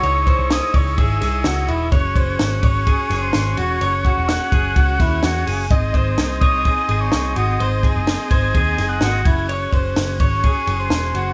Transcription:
<<
  \new Staff \with { instrumentName = "Soft synth lead" } { \time 4/4 \key cis \minor \tempo 4 = 127 cis'''4 dis'''8 cis'''8 e'''4. r8 | r4. cis'''4~ cis'''16 bis''8. cis'''8 | cis'''4 fis'''2~ fis'''8 r8 | r4. dis'''4~ dis'''16 cis'''8. dis'''8 |
r4. gis'''4~ gis'''16 fis'''8. gis'''8 | r4. cis'''4~ cis'''16 bis''4~ bis''16 | }
  \new Staff \with { instrumentName = "Clean electric guitar" } { \time 4/4 \key cis \minor cis''8 bis'4 cis''8 gis'8 gis'8 fis'8 e'8 | cis''8 bis'4 cis''8 gis'8 gis'4 fis'8 | cis''8 fis'4 gis'8 fis'8 e'8 fis'8 gis'8 | dis''8 bis'4 cis''8 gis'8 gis'4 fis'8 |
bis'8 gis'4 bis'8 gis'8 gis'8 fis'8 e'8 | cis''8 bis'4 cis''8 gis'8 gis'4 fis'8 | }
  \new Staff \with { instrumentName = "Transistor combo organ" } { \time 4/4 \key cis \minor <dis' e' gis' cis''>1 | <cis' fis' gis' cis''>1~ | <cis' fis' gis' cis''>1 | <bis dis' gis' dis''>1~ |
<bis dis' gis' dis''>2.~ <bis dis' gis' dis''>8 <cis' fis' gis'>8~ | <cis' fis' gis'>1 | }
  \new Staff \with { instrumentName = "Picked electric bass" } { \clef bass \time 4/4 \key cis \minor cis,8. bis,,8 r16 cis,8 gis,,8 bis,,8 cis,8 e,,8 | fis,,8 fis,,8 gis,,8 gis,,8. r16 fis,,8 gis,,8 e,,8 | fis,,8. e,,8 r16 fis,,8 cis,8 dis,8 e,8 fis,,8 | gis,,8 gis,,8 bis,,8 bis,,8. r16 gis,,8 bis,,8 gis,,8 |
gis,,8. fis,,8 r16 gis,,8 dis,8 fis,,8 gis,,8 fis,,8~ | fis,,8 fis,,8 fis,,8 gis,,8. r16 fis,,8 e,,8 fis,,8 | }
  \new DrumStaff \with { instrumentName = "Drums" } \drummode { \time 4/4 cymr8 <bd cymr>8 <cymr sn>8 <bd cymr>8 <bd cymr>8 <cymr sn>8 <cymr sn>8 cymr8 | <bd cymr>8 <bd cymr>8 <cymr sn>8 <bd cymr>8 <bd cymr>8 <cymr sn>8 <cymr sn>8 cymr8 | cymr8 <bd cymr>8 <cymr sn>8 <bd cymr>8 <bd cymr>8 <bd cymr sn>8 <cymr sn>8 <hho cymr>8 | <hhp bd cymr>8 <bd cymr>8 <cymr sn>8 <bd cymr>8 <bd cymr>8 cymr8 <cymr sn>8 cymr8 |
cymr8 <bd cymr>8 <cymr sn>8 <bd cymr>8 <bd cymr>8 <cymr sn>8 <cymr sn>8 <bd cymr>8 | cymr8 <bd cymr>8 <cymr sn>8 <bd cymr>8 <bd cymr>8 cymr8 <cymr sn>8 cymr8 | }
>>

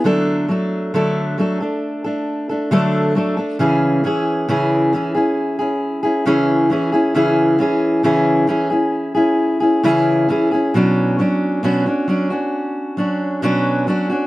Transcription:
\new Staff \with { instrumentName = "Steel-string acoustic guitar" } { \time 4/4 \key cis \phrygian \tempo 4 = 67 <d fis a d' a'>8 <fis a d' a'>8 <d fis a d' a'>8 <fis a d' a'>16 <a d' a'>8 <a d' a'>8 <a d' a'>16 <d fis a d' a'>8 <fis a d' a'>16 <a d' a'>16 | <cis e cis' e' gis'>8 <e cis' e' gis'>8 <cis e cis' e' gis'>8 <e cis' e' gis'>16 <cis' e' gis'>8 <cis' e' gis'>8 <cis' e' gis'>16 <cis e cis' e' gis'>8 <e cis' e' gis'>16 <cis' e' gis'>16 | <cis e cis' e' gis'>8 <e cis' e' gis'>8 <cis e cis' e' gis'>8 <e cis' e' gis'>16 <cis' e' gis'>8 <cis' e' gis'>8 <cis' e' gis'>16 <cis e cis' e' gis'>8 <e cis' e' gis'>16 <cis' e' gis'>16 | <b, fis cis' d' fis'>8 <fis cis' d' fis'>8 <b, fis cis' d' fis'>16 <cis' d' fis'>16 <fis cis' d' fis'>16 <cis' d' fis'>8. <fis cis' d' fis'>8 <b, fis cis' d' fis'>8 <fis cis' d' fis'>16 <cis' d' fis'>16 | }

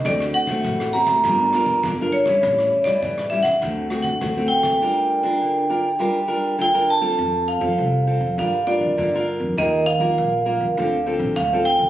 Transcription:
<<
  \new Staff \with { instrumentName = "Vibraphone" } { \time 4/4 \key g \minor \tempo 4 = 101 d''8 fis''4 bes''4. r8 cis''8~ | cis''8. d''8. e''16 fis''4 fis''8. g''8~ | g''2. g''8 a''8~ | a''8 f''4. f''8 d''4 r8 |
ees''8 f''2 r8 f''8 g''8 | }
  \new Staff \with { instrumentName = "Nylon-string guitar" } { \time 4/4 \key g \minor << { <a c' fis'>8. <a c' fis'>8. <a c' fis'>8 <d' f' bes'>8 <d' f' bes'>8 <d' f' bes'>16 <d' f' bes'>8 <g cis' e'>16~ | <g cis' e'>8. <g e'>8. <g cis' e'>16 r16 <a c' fis'>8 <a c' fis'>16 r16 <a c' fis'>16 <a c' fis'>8. | <d' f' bes'>8. <d' f' bes'>8. <d' f' bes'>16 r16 <d' f' bes'>16 r16 <d' f' bes'>8 <d' f' bes'>16 <d' f' bes'>8 <c' f' a'>16~ | <c' f' a'>8. <c' f' a'>8. <c' f' a'>8 <d' f' bes'>16 r16 <d' f' bes'>8 <d' f' bes'>16 <d' f' bes'>8. |
<bes f' bes'>8 r16 <bes f' bes'>8. <bes f' bes'>16 r16 <c' f' a'>16 r16 <c' f' a'>8 r16 <c' f' a'>8. | } \\ { d4 a,4 g4 d4 | a,4 e4 d4 a,4 | g4 d4 g4 d4 | f4 c4 g4 d4 |
ees4 bes,4 d4 a,4 | } >> }
  \new Staff \with { instrumentName = "Upright bass" } { \clef bass \time 4/4 \key g \minor d,8 r8 a,,4 g,,4 g,,4 | a,,8 r8 a,4 d,4 d,4 | r1 | f,8. f,16 c,8. f,16 g,8. d,16 g,8. f,16 |
ees,8. ees,16 bes,,8. ees,16 d,8. a,,16 d,8. d,16 | }
  \new DrumStaff \with { instrumentName = "Drums" } \drummode { \time 4/4 <hh bd ss>16 ss16 hh16 <bd ss>16 <hh bd>16 ss16 hh16 <bd ss>16 <hh bd ss>8 <hh ss>16 <hh bd>16 <hh bd ss>16 hh16 hh16 <hh bd ss>16 | <hh bd ss>16 ss16 hh16 <bd ss>16 <hh bd>16 <hh ss>16 hh16 <hh bd ss>16 <hh bd ss>8 <hh ss>16 <hh bd>16 <hh bd ss>8 hh16 <bd ss>16 | r4 r4 r4 r4 | r4 r4 r4 r4 |
r4 r4 r4 r4 | }
>>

